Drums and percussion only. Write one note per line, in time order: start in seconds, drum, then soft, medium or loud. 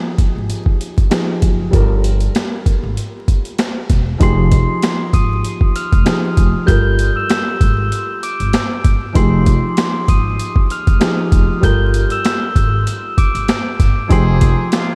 0.18 kick loud
0.18 closed hi-hat medium
0.50 closed hi-hat medium
0.66 kick medium
0.81 closed hi-hat medium
0.98 kick loud
0.98 closed hi-hat soft
1.11 snare loud
1.11 snare medium
1.11 closed hi-hat medium
1.42 kick loud
1.42 closed hi-hat medium
1.73 kick loud
1.73 closed hi-hat medium
2.04 closed hi-hat medium
2.21 closed hi-hat soft
2.35 snare loud
2.35 snare medium
2.35 closed hi-hat medium
2.66 kick loud
2.66 closed hi-hat medium
2.97 closed hi-hat medium
3.28 kick medium
3.28 closed hi-hat medium
3.45 closed hi-hat soft
3.59 snare loud
3.59 snare medium
3.59 closed hi-hat medium
3.90 kick loud
3.90 snare soft
3.90 closed hi-hat medium
4.21 kick loud
4.21 closed hi-hat medium
4.51 kick loud
4.51 closed hi-hat medium
4.82 snare loud
4.82 snare medium
4.82 closed hi-hat medium
5.13 kick loud
5.13 closed hi-hat medium
5.45 closed hi-hat medium
5.61 kick medium
5.76 closed hi-hat medium
5.92 kick loud
5.92 closed hi-hat soft
6.06 snare loud
6.06 snare medium
6.06 closed hi-hat medium
6.37 kick loud
6.37 closed hi-hat medium
6.68 kick loud
6.68 closed hi-hat medium
6.99 closed hi-hat medium
7.30 snare loud
7.30 snare medium
7.30 closed hi-hat loud
7.61 kick loud
7.61 closed hi-hat medium
7.92 closed hi-hat medium
8.23 closed hi-hat medium
8.40 closed hi-hat soft
8.53 snare loud
8.53 closed hi-hat medium
8.85 kick loud
8.85 closed hi-hat medium
9.15 kick loud
9.15 closed hi-hat medium
9.46 kick loud
9.46 closed hi-hat medium
9.77 snare loud
9.77 snare medium
9.77 closed hi-hat medium
10.08 kick loud
10.08 closed hi-hat medium
10.39 closed hi-hat medium
10.56 kick medium
10.70 closed hi-hat medium
10.87 kick loud
10.87 closed hi-hat soft
11.01 snare loud
11.01 snare medium
11.01 closed hi-hat medium
11.32 kick loud
11.32 closed hi-hat medium
11.63 kick loud
11.63 closed hi-hat medium
11.94 closed hi-hat medium
12.10 closed hi-hat soft
12.25 snare loud
12.25 snare medium
12.25 closed hi-hat loud
12.56 kick loud
12.56 closed hi-hat medium
12.87 closed hi-hat medium
13.18 kick loud
13.18 closed hi-hat medium
13.35 closed hi-hat soft
13.48 snare loud
13.48 snare medium
13.48 closed hi-hat medium
13.80 kick loud
13.80 snare soft
13.80 closed hi-hat medium
14.10 kick loud
14.10 closed hi-hat medium
14.41 kick loud
14.41 closed hi-hat medium
14.72 snare loud
14.72 snare medium
14.72 closed hi-hat medium